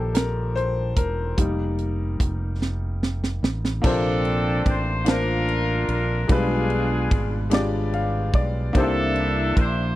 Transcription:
0.00 0.93 A#1 medium
0.00 0.10 D#3 medium
0.00 0.11 F3 medium
0.00 0.11 A#3 soft
0.00 0.11 D4 medium
0.00 1.40 G4 loud
0.00 0.16 A4 medium
0.00 0.14 A#4 medium
0.00 0.55 C5 medium
0.14 0.57 A#4 medium
0.14 snare loud
0.14 closed hi-hat medium
0.55 0.98 C5 medium
0.55 closed hi-hat soft
0.96 1.35 E1 medium
0.96 1.75 A#4 medium
0.96 kick medium
0.96 closed hi-hat medium
1.37 2.16 F1 medium
1.37 3.79 G3 medium
1.37 3.80 A#3 soft
1.37 3.80 D#4 medium
1.37 kick loud
1.37 closed hi-hat medium
1.78 closed hi-hat soft
2.20 3.39 F1 medium
2.20 kick medium
2.20 closed hi-hat medium
2.62 snare medium
3.03 snare medium
3.24 snare medium
3.43 3.81 A1 medium
3.43 snare medium
3.65 snare medium
3.82 4.62 A#1 medium
3.82 5.03 C3 medium
3.82 4.67 A#3 medium
3.82 5.03 C4 medium
3.82 4.67 D4 medium
3.82 4.68 F4 medium
3.82 4.68 A4 medium
3.82 kick loud
3.82 crash medium
3.86 5.04 D4 medium
3.86 4.63 A4 loud
3.86 4.69 C5 medium
4.25 ride soft
4.66 5.85 A1 medium
4.66 5.08 C5 loud
4.66 kick medium
4.66 ride soft
5.04 5.90 A#3 medium
5.04 5.90 D4 medium
5.04 5.91 F4 medium
5.04 5.91 A5 medium
5.04 snare loud
5.04 ride medium
5.09 6.27 D4 medium
5.09 6.27 F4 medium
5.09 5.89 A#4 loud
5.09 5.92 C5 medium
5.49 ride soft
5.88 6.26 A#1 medium
5.88 6.28 A#4 medium
5.88 ride soft
6.27 7.07 B1 medium
6.27 7.48 B2 medium
6.27 7.14 G3 medium
6.27 7.12 G#3 medium
6.27 7.13 D4 medium
6.27 7.49 D4 medium
6.27 7.13 F4 medium
6.27 7.53 G#4 medium
6.27 kick loud
6.27 ride medium
6.31 7.49 F4 medium
6.31 7.14 B4 loud
6.70 ride soft
7.11 8.30 G#1 medium
7.11 kick medium
7.11 ride medium
7.50 8.35 G#3 medium
7.50 8.35 D4 medium
7.50 8.36 F4 medium
7.50 8.36 G4 medium
7.50 snare loud
7.50 ride medium
7.54 8.33 D5 medium
7.93 8.31 F5 medium
7.93 ride soft
8.33 8.71 B1 medium
8.33 8.72 D5 medium
8.33 kick medium
8.33 ride soft
8.73 9.53 C2 loud
8.73 9.94 C3 medium
8.73 9.58 A#3 loud
8.73 9.58 D4 medium
8.73 8.81 D#4 medium
8.73 9.59 G4 medium
8.73 9.60 C5 loud
8.73 kick loud
8.73 ride medium
8.77 9.95 D4 medium
8.77 9.95 E4 medium
8.77 9.54 A4 loud
8.82 9.62 E4 medium
9.16 ride soft
9.57 9.96 A#1 loud
9.57 9.96 C5 loud
9.57 kick medium
9.57 ride soft

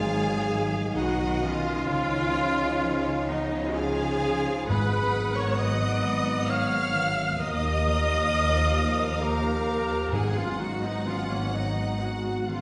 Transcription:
0.00 0.95 G#1 medium
0.00 0.95 G#2 medium
0.00 1.92 G#2 medium
0.00 0.49 D#3 medium
0.00 0.26 F#3 medium
0.00 1.71 F#3 medium
0.00 1.64 B3 medium
0.00 0.95 D#4 medium
0.00 4.65 D#4 medium
0.00 0.68 F4 medium
0.00 0.96 G#4 medium
0.00 0.96 F5 medium
0.00 0.68 G#5 medium
0.00 0.97 G#5 medium
0.27 0.72 F#3 medium
0.50 1.42 D#3 medium
0.73 1.18 F#3 medium
0.95 1.86 B1 medium
0.95 1.86 B2 medium
0.95 1.43 D#4 medium
0.95 2.11 D#4 medium
0.95 1.42 F#4 medium
0.95 1.89 D#5 medium
0.95 1.41 F#5 medium
0.95 1.44 F#5 medium
1.19 1.92 F#3 soft
1.41 1.92 D#3 soft
1.41 3.30 C#4 medium
1.41 3.28 F4 loud
1.41 3.28 F5 medium
1.41 3.30 F5 medium
1.65 1.92 B3 medium
1.88 4.65 C#2 medium
1.88 4.65 C#3 medium
1.88 4.73 C#3 medium
1.88 4.64 F3 medium
1.88 3.73 C#5 medium
2.12 4.45 D#4 medium
2.35 2.80 F3 soft
2.58 3.04 C#4 soft
2.82 3.28 F3 medium
3.05 3.51 C#4 soft
3.28 4.23 F3 medium
3.28 3.77 B3 medium
3.28 3.76 D#4 medium
3.28 3.76 D#5 medium
3.28 3.79 D#5 medium
3.53 3.99 C#4 medium
3.76 4.67 F4 medium
3.76 4.72 F4 medium
3.76 4.69 G#4 loud
3.76 4.69 F5 medium
3.76 4.68 G#5 medium
3.76 4.72 G#5 medium
4.00 4.72 C#4 soft
4.24 4.73 F3 medium
4.46 6.47 D#4 medium
4.68 7.34 G#1 medium
4.68 7.35 G#2 medium
4.68 7.42 G#2 medium
4.68 6.00 G#2 medium
4.68 7.34 F#3 medium
4.68 7.34 B3 medium
4.68 5.34 G#4 medium
4.68 5.34 B4 loud
4.68 7.35 F#5 medium
4.68 5.35 B5 medium
4.68 5.36 B5 medium
4.92 7.15 B3 medium
5.14 5.57 D#3 medium
5.36 5.80 F#3 soft
5.36 5.59 A#4 medium
5.36 5.58 C#5 loud
5.36 5.58 C#6 medium
5.36 5.61 C#6 medium
5.58 6.02 D#3 soft
5.58 6.50 B4 medium
5.58 6.47 D#5 medium
5.58 6.49 D#6 medium
5.58 6.51 D#6 medium
5.81 6.24 F#3 soft
6.03 6.92 D#3 soft
6.26 6.70 F#3 medium
6.48 10.38 D#4 medium
6.48 7.12 C#5 medium
6.48 7.39 F5 loud
6.48 7.39 F6 loud
6.48 7.12 F6 medium
6.71 7.42 F#3 soft
6.94 7.37 D#3 medium
7.16 7.42 B3 soft
7.38 10.12 D#2 medium
7.38 10.16 D#3 medium
7.38 9.96 F3 medium
7.38 9.96 A#3 medium
7.38 9.23 A#4 medium
7.38 9.21 D#5 loud
7.38 10.10 F5 medium
7.38 9.24 D#6 medium
7.38 9.22 D#6 medium
7.61 9.88 G4 medium
7.84 8.29 F3 soft
8.07 8.52 A#3 soft
8.30 8.75 F3 medium
8.76 9.66 F3 soft
8.99 9.43 A#3 medium
9.21 10.16 F4 medium
9.21 10.12 G4 medium
9.21 10.11 A#4 medium
9.21 10.12 A#5 medium
9.21 10.16 A#5 medium
9.44 10.16 A#3 soft
9.67 10.16 F3 soft
9.89 10.16 G4 soft
10.12 12.61 G#1 medium
10.12 12.61 G#2 medium
10.12 11.49 G#2 medium
10.12 11.97 F#3 medium
10.12 11.97 B3 medium
10.12 10.37 D#4 medium
10.12 10.36 G#4 medium
10.12 12.61 F#5 medium
10.12 10.35 G#5 medium
10.12 10.38 G#5 medium
10.35 12.61 B3 medium
10.35 10.60 C#4 medium
10.35 10.59 F4 medium
10.35 10.59 F5 medium
10.35 10.62 F5 medium
10.58 11.04 D#3 soft
10.58 10.83 D#4 medium
10.58 10.82 F#4 medium
10.58 10.82 F#5 medium
10.58 10.85 F#5 medium
10.81 11.27 F#3 soft
10.81 11.07 B3 medium
10.81 11.06 D#4 medium
10.81 11.04 D#5 medium
10.81 11.06 D#5 medium
11.05 11.51 D#3 soft
11.05 11.31 C#4 medium
11.05 11.30 F4 medium
11.05 11.28 F5 medium
11.05 11.32 F5 medium
11.28 11.74 F#3 soft
11.28 11.55 A#3 medium
11.28 11.52 C#5 medium
11.28 11.55 C#5 medium
11.32 11.54 C#4 medium
11.52 12.47 D#3 soft
11.52 12.01 B3 medium
11.52 12.01 D#4 medium
11.52 12.00 D#5 medium
11.52 12.03 D#5 medium
11.75 12.23 F#3 soft
11.99 12.61 F#3 medium
11.99 12.61 B3 medium
11.99 12.48 D#4 medium
11.99 12.49 F#4 medium
11.99 12.61 G#4 soft
11.99 12.48 F#5 medium
11.99 12.50 F#5 medium
12.24 12.61 F#3 soft
12.48 12.61 D#3 soft
12.48 12.61 C#4 medium
12.48 12.61 F4 medium
12.48 12.61 F5 medium

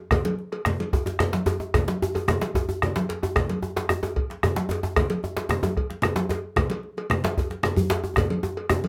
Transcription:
0.11 bombo rim medium
0.11 bombo low loud
0.11 cowbell medium
0.11 low conga medium
0.11 djembe bass medium
0.25 cowbell medium
0.25 djembe slap medium
0.25 high conga medium
0.38 djembe slap soft
0.52 bombo rim soft
0.52 cowbell soft
0.52 high conga soft
0.65 bombo rim medium
0.65 djembe slap medium
0.65 djembe tone medium
0.65 high conga soft
0.65 djembe bass medium
0.65 low conga medium
0.80 cowbell soft
0.80 high conga medium
0.93 bombo rim soft
0.93 bombo low medium
0.93 cowbell soft
0.93 djembe tone medium
1.06 bombo rim soft
1.06 djembe slap medium
1.06 djembe tone medium
1.06 high conga soft
1.19 bombo rim medium
1.19 cowbell medium
1.19 djembe tone medium
1.19 djembe bass medium
1.19 low conga medium
1.33 djembe slap medium
1.33 djembe slap soft
1.33 high conga medium
1.46 cowbell soft
1.46 djembe slap medium
1.46 djembe tone medium
1.46 djembe tone loud
1.60 djembe tone medium
1.74 bombo rim medium
1.74 bombo low medium
1.74 cowbell medium
1.74 djembe tone medium
1.74 djembe bass medium
1.74 low conga medium
1.88 bombo rim soft
1.88 djembe slap medium
1.88 high conga soft
2.02 djembe tone loud
2.14 bombo rim soft
2.14 cowbell soft
2.14 high conga soft
2.14 djembe tone medium
2.28 bombo rim medium
2.28 djembe slap medium
2.28 high conga soft
2.28 djembe tone medium
2.28 low conga medium
2.28 djembe bass medium
2.41 bombo rim soft
2.41 cowbell soft
2.41 djembe slap medium
2.41 high conga soft
2.54 bombo low medium
2.54 cowbell soft
2.54 djembe tone loud
2.69 djembe tone medium
2.82 bombo rim loud
2.82 cowbell soft
2.82 djembe slap soft
2.82 djembe tone medium
2.82 djembe bass medium
2.82 low conga medium
2.96 djembe slap medium
2.96 high conga medium
3.09 cowbell soft
3.09 djembe slap medium
3.23 bombo rim soft
3.23 djembe tone loud
3.36 bombo rim medium
3.36 bombo low medium
3.36 cowbell medium
3.36 djembe bass medium
3.36 low conga medium
3.49 cowbell medium
3.49 djembe slap medium
3.49 high conga medium
3.63 djembe slap soft
3.63 djembe tone medium
3.76 bombo rim soft
3.76 cowbell soft
3.76 djembe slap medium
3.76 high conga soft
3.89 bombo rim medium
3.89 djembe slap medium
3.89 djembe tone medium
3.89 high conga soft
3.89 djembe tone medium
3.89 djembe bass medium
4.03 cowbell soft
4.03 djembe tone loud
4.16 bombo rim soft
4.16 bombo low medium
4.16 cowbell soft
4.30 bombo rim soft
4.30 djembe slap medium
4.30 high conga soft
4.43 bombo rim medium
4.43 cowbell soft
4.43 djembe tone medium
4.43 djembe bass medium
4.43 low conga medium
4.56 djembe slap medium
4.56 high conga medium
4.59 djembe slap soft
4.69 djembe slap medium
4.69 djembe tone medium
4.71 cowbell soft
4.71 djembe tone medium
4.83 djembe tone medium
4.96 bombo rim medium
4.96 bombo low medium
4.96 cowbell medium
4.96 djembe bass medium
4.96 low conga medium
5.10 cowbell medium
5.10 djembe slap medium
5.10 high conga soft
5.23 djembe slap soft
5.23 djembe tone medium
5.37 bombo rim soft
5.37 cowbell soft
5.37 djembe slap medium
5.37 high conga soft
5.49 bombo rim medium
5.49 djembe slap medium
5.49 djembe tone medium
5.49 high conga soft
5.49 djembe bass medium
5.49 low conga medium
5.63 cowbell soft
5.63 djembe tone loud
5.63 high conga medium
5.77 bombo rim soft
5.77 bombo low medium
5.77 cowbell soft
5.90 bombo rim soft
5.90 djembe slap medium
5.90 high conga soft
6.02 bombo rim medium
6.02 cowbell medium
6.02 djembe tone medium
6.02 low conga medium
6.02 djembe bass medium
6.16 djembe slap medium
6.16 high conga medium
6.29 cowbell medium
6.29 djembe slap medium
6.29 djembe tone medium
6.56 bombo rim medium
6.56 bombo low medium
6.56 cowbell medium
6.56 djembe bass medium
6.56 low conga medium
6.70 cowbell medium
6.70 djembe slap medium
6.70 high conga medium
6.83 djembe slap soft
6.97 bombo rim soft
6.97 cowbell medium
6.97 high conga soft
7.10 bombo rim loud
7.10 djembe slap medium
7.10 high conga soft
7.10 djembe tone medium
7.10 low conga medium
7.10 djembe bass medium
7.24 cowbell soft
7.24 djembe slap loud
7.24 high conga medium
7.37 bombo rim soft
7.37 bombo low medium
7.37 cowbell soft
7.37 djembe tone medium
7.50 bombo rim soft
7.50 djembe slap medium
7.50 high conga soft
7.63 bombo rim medium
7.63 cowbell soft
7.63 djembe tone medium
7.63 low conga medium
7.63 djembe bass medium
7.76 high conga medium
7.76 djembe bass medium
7.90 cowbell soft
7.90 djembe slap loud
7.90 djembe slap medium
7.90 djembe tone medium
8.04 djembe tone medium
8.16 bombo rim medium
8.16 bombo low medium
8.16 cowbell medium
8.16 djembe slap soft
8.16 djembe tone medium
8.16 low conga medium
8.16 djembe bass medium
8.30 cowbell soft
8.30 high conga medium
8.43 bombo rim soft
8.43 high conga soft
8.43 djembe tone medium
8.57 bombo rim soft
8.57 cowbell soft
8.70 bombo rim medium
8.70 djembe slap medium
8.70 djembe tone loud
8.70 djembe tone medium
8.70 low conga medium
8.70 djembe bass medium
8.84 cowbell soft
8.84 high conga medium

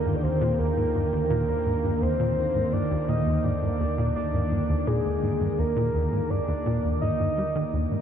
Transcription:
0.00 8.02 D#2 medium
0.00 8.02 D3 medium
0.00 8.02 D#3 medium
0.00 8.02 A#3 medium
0.00 8.02 F4 medium
0.00 0.17 A#4 loud
0.00 8.02 G5 medium
0.05 0.14 G2 medium
0.16 0.24 D5 medium
0.23 0.28 D#2 loud
0.23 0.60 C5 loud
0.41 0.54 A#2 loud
0.59 0.72 D#2 medium
0.59 1.29 A#4 loud
0.77 0.86 G#2 medium
0.95 1.03 G2 medium
1.13 1.18 D#2 medium
1.30 1.43 A#2 medium
1.30 2.03 A#4 loud
1.48 1.61 D#2 medium
1.66 1.75 G#2 medium
1.84 1.93 G2 medium
2.02 2.07 D#2 loud
2.02 2.74 C5 loud
2.20 2.33 A#2 loud
2.37 2.50 D#2 medium
2.55 2.64 G#2 medium
2.73 2.82 G2 medium
2.73 3.10 D5 loud
2.91 2.96 D#2 loud
3.08 3.22 A#2 loud
3.08 3.37 D#5 loud
3.26 3.40 D#2 medium
3.37 3.46 D#5 medium
3.44 3.53 G#2 medium
3.44 4.15 D5 loud
3.62 3.71 G2 medium
3.80 3.85 D#2 loud
3.98 4.11 A#2 loud
4.16 4.29 D#2 medium
4.16 4.89 D5 loud
4.34 4.42 G#2 medium
4.52 4.60 G2 medium
4.69 4.75 D#2 loud
4.87 5.00 A#2 loud
4.87 5.60 G#4 medium
5.05 5.18 D#2 medium
5.23 5.32 G#2 medium
5.41 5.50 G2 medium
5.58 5.64 D#2 loud
5.58 6.32 A#4 loud
5.76 5.90 A#2 loud
5.94 6.08 D#2 medium
6.12 6.21 G#2 medium
6.30 6.39 G2 medium
6.30 7.01 D5 loud
6.48 6.53 D#2 loud
6.66 6.79 A#2 loud
6.84 6.97 D#2 medium
7.01 7.11 G#2 medium
7.01 8.02 D#5 loud
7.20 7.28 G2 medium
7.38 7.43 G3 medium
7.55 7.64 D#3 loud
7.73 7.86 D#2 loud
7.91 7.96 G#2 medium

